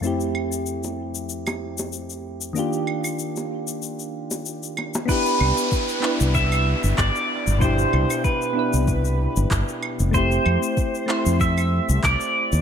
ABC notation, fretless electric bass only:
X:1
M:4/4
L:1/16
Q:"Swing 16ths" 1/4=95
K:C
V:1 name="Fretless electric bass" clef=bass
z16 | z16 | z2 C,, z4 C,,3 z G,,, G,,, z2 G,,,- | G,,, z C,, z4 C,,3 z G,,, G,,, z2 F,,,- |
F,,, z F,, z4 F,,3 z C,, C,, z2 _E,, |]